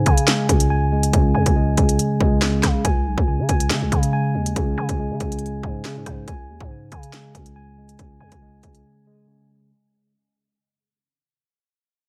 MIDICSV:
0, 0, Header, 1, 4, 480
1, 0, Start_track
1, 0, Tempo, 428571
1, 1271, Time_signature, 4, 2, 24, 8
1, 13532, End_track
2, 0, Start_track
2, 0, Title_t, "Tine electric piano"
2, 0, Program_c, 0, 4
2, 0, Note_on_c, 0, 49, 84
2, 69, Note_on_c, 0, 80, 91
2, 310, Note_on_c, 0, 56, 90
2, 538, Note_off_c, 0, 49, 0
2, 551, Note_on_c, 0, 49, 82
2, 774, Note_off_c, 0, 80, 0
2, 788, Note_on_c, 0, 80, 93
2, 1020, Note_off_c, 0, 56, 0
2, 1034, Note_on_c, 0, 56, 78
2, 1254, Note_off_c, 0, 49, 0
2, 1267, Note_on_c, 0, 49, 93
2, 1494, Note_off_c, 0, 80, 0
2, 1507, Note_on_c, 0, 80, 91
2, 1736, Note_off_c, 0, 56, 0
2, 1749, Note_on_c, 0, 56, 91
2, 1985, Note_off_c, 0, 49, 0
2, 1999, Note_on_c, 0, 49, 77
2, 2467, Note_off_c, 0, 56, 0
2, 2480, Note_on_c, 0, 56, 86
2, 2696, Note_off_c, 0, 49, 0
2, 2709, Note_on_c, 0, 49, 87
2, 2949, Note_off_c, 0, 80, 0
2, 3186, Note_on_c, 0, 80, 107
2, 3190, Note_off_c, 0, 49, 0
2, 3196, Note_off_c, 0, 56, 0
2, 3667, Note_on_c, 0, 49, 81
2, 3900, Note_off_c, 0, 80, 0
2, 3913, Note_on_c, 0, 80, 93
2, 4143, Note_on_c, 0, 56, 87
2, 4378, Note_off_c, 0, 49, 0
2, 4391, Note_on_c, 0, 49, 86
2, 4612, Note_off_c, 0, 80, 0
2, 4626, Note_on_c, 0, 80, 96
2, 4857, Note_off_c, 0, 56, 0
2, 4871, Note_on_c, 0, 56, 81
2, 5097, Note_off_c, 0, 49, 0
2, 5111, Note_on_c, 0, 49, 100
2, 5341, Note_off_c, 0, 80, 0
2, 5354, Note_on_c, 0, 80, 93
2, 5582, Note_off_c, 0, 56, 0
2, 5595, Note_on_c, 0, 56, 88
2, 5819, Note_off_c, 0, 49, 0
2, 5832, Note_on_c, 0, 49, 86
2, 6295, Note_off_c, 0, 56, 0
2, 6309, Note_on_c, 0, 56, 83
2, 6543, Note_off_c, 0, 49, 0
2, 6557, Note_on_c, 0, 49, 86
2, 6792, Note_off_c, 0, 80, 0
2, 7030, Note_off_c, 0, 56, 0
2, 7032, Note_on_c, 0, 80, 98
2, 7034, Note_off_c, 0, 49, 0
2, 7503, Note_on_c, 0, 49, 83
2, 7735, Note_off_c, 0, 80, 0
2, 7748, Note_on_c, 0, 80, 91
2, 7989, Note_on_c, 0, 56, 92
2, 8218, Note_off_c, 0, 49, 0
2, 8231, Note_on_c, 0, 49, 84
2, 8454, Note_off_c, 0, 80, 0
2, 8467, Note_on_c, 0, 80, 94
2, 8700, Note_off_c, 0, 56, 0
2, 8713, Note_on_c, 0, 56, 78
2, 8934, Note_off_c, 0, 49, 0
2, 8947, Note_on_c, 0, 49, 91
2, 9175, Note_off_c, 0, 80, 0
2, 9188, Note_on_c, 0, 80, 96
2, 9416, Note_off_c, 0, 56, 0
2, 9430, Note_on_c, 0, 56, 95
2, 9666, Note_off_c, 0, 49, 0
2, 9679, Note_on_c, 0, 49, 75
2, 10147, Note_off_c, 0, 56, 0
2, 10160, Note_on_c, 0, 56, 89
2, 10377, Note_off_c, 0, 49, 0
2, 10391, Note_on_c, 0, 49, 86
2, 10629, Note_off_c, 0, 80, 0
2, 10871, Note_off_c, 0, 49, 0
2, 10875, Note_off_c, 0, 56, 0
2, 13532, End_track
3, 0, Start_track
3, 0, Title_t, "808-style bass"
3, 0, Program_c, 1, 38
3, 70, Note_on_c, 1, 49, 103
3, 531, Note_off_c, 1, 49, 0
3, 550, Note_on_c, 1, 37, 99
3, 1242, Note_off_c, 1, 37, 0
3, 1271, Note_on_c, 1, 37, 114
3, 1501, Note_off_c, 1, 37, 0
3, 1511, Note_on_c, 1, 40, 104
3, 1633, Note_off_c, 1, 40, 0
3, 1638, Note_on_c, 1, 37, 101
3, 1976, Note_off_c, 1, 37, 0
3, 1990, Note_on_c, 1, 37, 105
3, 2221, Note_off_c, 1, 37, 0
3, 2470, Note_on_c, 1, 37, 101
3, 2931, Note_off_c, 1, 37, 0
3, 2950, Note_on_c, 1, 49, 106
3, 3181, Note_off_c, 1, 49, 0
3, 3190, Note_on_c, 1, 37, 104
3, 3430, Note_on_c, 1, 35, 101
3, 3447, Note_off_c, 1, 37, 0
3, 3551, Note_off_c, 1, 35, 0
3, 3557, Note_on_c, 1, 37, 104
3, 3798, Note_on_c, 1, 49, 104
3, 3815, Note_off_c, 1, 37, 0
3, 3905, Note_off_c, 1, 49, 0
3, 3910, Note_on_c, 1, 37, 105
3, 4151, Note_on_c, 1, 49, 101
3, 4167, Note_off_c, 1, 37, 0
3, 4278, Note_on_c, 1, 37, 99
3, 4295, Note_off_c, 1, 49, 0
3, 4385, Note_off_c, 1, 37, 0
3, 4390, Note_on_c, 1, 49, 109
3, 4870, Note_on_c, 1, 39, 99
3, 4887, Note_off_c, 1, 49, 0
3, 5098, Note_off_c, 1, 39, 0
3, 5110, Note_on_c, 1, 37, 112
3, 5341, Note_off_c, 1, 37, 0
3, 5350, Note_on_c, 1, 49, 110
3, 5470, Note_off_c, 1, 49, 0
3, 5477, Note_on_c, 1, 37, 106
3, 5717, Note_on_c, 1, 49, 105
3, 5734, Note_off_c, 1, 37, 0
3, 5825, Note_off_c, 1, 49, 0
3, 5830, Note_on_c, 1, 37, 105
3, 6291, Note_off_c, 1, 37, 0
3, 6310, Note_on_c, 1, 44, 103
3, 6551, Note_on_c, 1, 49, 110
3, 6567, Note_off_c, 1, 44, 0
3, 6679, Note_on_c, 1, 44, 100
3, 6695, Note_off_c, 1, 49, 0
3, 6785, Note_off_c, 1, 44, 0
3, 6791, Note_on_c, 1, 44, 103
3, 7021, Note_off_c, 1, 44, 0
3, 7030, Note_on_c, 1, 37, 103
3, 7272, Note_on_c, 1, 39, 100
3, 7289, Note_off_c, 1, 37, 0
3, 7392, Note_off_c, 1, 39, 0
3, 7398, Note_on_c, 1, 44, 101
3, 7736, Note_off_c, 1, 44, 0
3, 7750, Note_on_c, 1, 49, 106
3, 8211, Note_off_c, 1, 49, 0
3, 8229, Note_on_c, 1, 37, 102
3, 8921, Note_off_c, 1, 37, 0
3, 8950, Note_on_c, 1, 37, 108
3, 9181, Note_off_c, 1, 37, 0
3, 9191, Note_on_c, 1, 40, 104
3, 9311, Note_off_c, 1, 40, 0
3, 9317, Note_on_c, 1, 37, 101
3, 9656, Note_off_c, 1, 37, 0
3, 9670, Note_on_c, 1, 37, 107
3, 9901, Note_off_c, 1, 37, 0
3, 13532, End_track
4, 0, Start_track
4, 0, Title_t, "Drums"
4, 67, Note_on_c, 9, 42, 65
4, 70, Note_on_c, 9, 36, 91
4, 179, Note_off_c, 9, 42, 0
4, 182, Note_off_c, 9, 36, 0
4, 196, Note_on_c, 9, 42, 83
4, 308, Note_off_c, 9, 42, 0
4, 311, Note_on_c, 9, 38, 114
4, 311, Note_on_c, 9, 42, 80
4, 423, Note_off_c, 9, 38, 0
4, 423, Note_off_c, 9, 42, 0
4, 550, Note_on_c, 9, 36, 95
4, 552, Note_on_c, 9, 42, 76
4, 662, Note_off_c, 9, 36, 0
4, 664, Note_off_c, 9, 42, 0
4, 673, Note_on_c, 9, 42, 76
4, 785, Note_off_c, 9, 42, 0
4, 1157, Note_on_c, 9, 42, 85
4, 1269, Note_off_c, 9, 42, 0
4, 1270, Note_on_c, 9, 42, 82
4, 1271, Note_on_c, 9, 36, 117
4, 1382, Note_off_c, 9, 42, 0
4, 1383, Note_off_c, 9, 36, 0
4, 1635, Note_on_c, 9, 42, 69
4, 1638, Note_on_c, 9, 36, 103
4, 1747, Note_off_c, 9, 42, 0
4, 1750, Note_off_c, 9, 36, 0
4, 1987, Note_on_c, 9, 42, 68
4, 1990, Note_on_c, 9, 36, 94
4, 2099, Note_off_c, 9, 42, 0
4, 2102, Note_off_c, 9, 36, 0
4, 2116, Note_on_c, 9, 42, 76
4, 2228, Note_off_c, 9, 42, 0
4, 2231, Note_on_c, 9, 42, 81
4, 2343, Note_off_c, 9, 42, 0
4, 2470, Note_on_c, 9, 36, 97
4, 2582, Note_off_c, 9, 36, 0
4, 2711, Note_on_c, 9, 38, 107
4, 2823, Note_off_c, 9, 38, 0
4, 2949, Note_on_c, 9, 37, 96
4, 2949, Note_on_c, 9, 38, 68
4, 2950, Note_on_c, 9, 36, 89
4, 2950, Note_on_c, 9, 42, 80
4, 3061, Note_off_c, 9, 37, 0
4, 3061, Note_off_c, 9, 38, 0
4, 3062, Note_off_c, 9, 36, 0
4, 3062, Note_off_c, 9, 42, 0
4, 3189, Note_on_c, 9, 42, 84
4, 3190, Note_on_c, 9, 36, 118
4, 3301, Note_off_c, 9, 42, 0
4, 3302, Note_off_c, 9, 36, 0
4, 3557, Note_on_c, 9, 36, 104
4, 3669, Note_off_c, 9, 36, 0
4, 3906, Note_on_c, 9, 42, 67
4, 3910, Note_on_c, 9, 36, 90
4, 4018, Note_off_c, 9, 42, 0
4, 4022, Note_off_c, 9, 36, 0
4, 4036, Note_on_c, 9, 42, 85
4, 4148, Note_off_c, 9, 42, 0
4, 4150, Note_on_c, 9, 38, 115
4, 4150, Note_on_c, 9, 42, 79
4, 4262, Note_off_c, 9, 38, 0
4, 4262, Note_off_c, 9, 42, 0
4, 4390, Note_on_c, 9, 36, 94
4, 4391, Note_on_c, 9, 42, 73
4, 4502, Note_off_c, 9, 36, 0
4, 4503, Note_off_c, 9, 42, 0
4, 4513, Note_on_c, 9, 42, 74
4, 4625, Note_off_c, 9, 42, 0
4, 4997, Note_on_c, 9, 42, 86
4, 5109, Note_off_c, 9, 42, 0
4, 5109, Note_on_c, 9, 42, 84
4, 5110, Note_on_c, 9, 36, 121
4, 5221, Note_off_c, 9, 42, 0
4, 5222, Note_off_c, 9, 36, 0
4, 5475, Note_on_c, 9, 42, 70
4, 5477, Note_on_c, 9, 36, 103
4, 5587, Note_off_c, 9, 42, 0
4, 5589, Note_off_c, 9, 36, 0
4, 5827, Note_on_c, 9, 42, 63
4, 5830, Note_on_c, 9, 36, 96
4, 5939, Note_off_c, 9, 42, 0
4, 5942, Note_off_c, 9, 36, 0
4, 5957, Note_on_c, 9, 42, 79
4, 6032, Note_off_c, 9, 42, 0
4, 6032, Note_on_c, 9, 42, 62
4, 6113, Note_off_c, 9, 42, 0
4, 6113, Note_on_c, 9, 42, 47
4, 6225, Note_off_c, 9, 42, 0
4, 6310, Note_on_c, 9, 36, 94
4, 6422, Note_off_c, 9, 36, 0
4, 6551, Note_on_c, 9, 38, 106
4, 6663, Note_off_c, 9, 38, 0
4, 6790, Note_on_c, 9, 37, 97
4, 6791, Note_on_c, 9, 36, 91
4, 6791, Note_on_c, 9, 42, 79
4, 6902, Note_off_c, 9, 37, 0
4, 6903, Note_off_c, 9, 36, 0
4, 6903, Note_off_c, 9, 42, 0
4, 7030, Note_on_c, 9, 36, 124
4, 7030, Note_on_c, 9, 42, 80
4, 7142, Note_off_c, 9, 36, 0
4, 7142, Note_off_c, 9, 42, 0
4, 7397, Note_on_c, 9, 36, 105
4, 7509, Note_off_c, 9, 36, 0
4, 7747, Note_on_c, 9, 42, 67
4, 7750, Note_on_c, 9, 36, 90
4, 7859, Note_off_c, 9, 42, 0
4, 7862, Note_off_c, 9, 36, 0
4, 7876, Note_on_c, 9, 42, 80
4, 7988, Note_off_c, 9, 42, 0
4, 7990, Note_on_c, 9, 38, 112
4, 7991, Note_on_c, 9, 42, 81
4, 8102, Note_off_c, 9, 38, 0
4, 8103, Note_off_c, 9, 42, 0
4, 8230, Note_on_c, 9, 36, 92
4, 8231, Note_on_c, 9, 42, 78
4, 8342, Note_off_c, 9, 36, 0
4, 8343, Note_off_c, 9, 42, 0
4, 8354, Note_on_c, 9, 42, 72
4, 8466, Note_off_c, 9, 42, 0
4, 8837, Note_on_c, 9, 42, 85
4, 8949, Note_off_c, 9, 42, 0
4, 8949, Note_on_c, 9, 42, 85
4, 8950, Note_on_c, 9, 36, 121
4, 9061, Note_off_c, 9, 42, 0
4, 9062, Note_off_c, 9, 36, 0
4, 9315, Note_on_c, 9, 42, 73
4, 9317, Note_on_c, 9, 36, 103
4, 9427, Note_off_c, 9, 42, 0
4, 9429, Note_off_c, 9, 36, 0
4, 9667, Note_on_c, 9, 42, 65
4, 9670, Note_on_c, 9, 36, 93
4, 9779, Note_off_c, 9, 42, 0
4, 9782, Note_off_c, 9, 36, 0
4, 9796, Note_on_c, 9, 42, 76
4, 9908, Note_off_c, 9, 42, 0
4, 13532, End_track
0, 0, End_of_file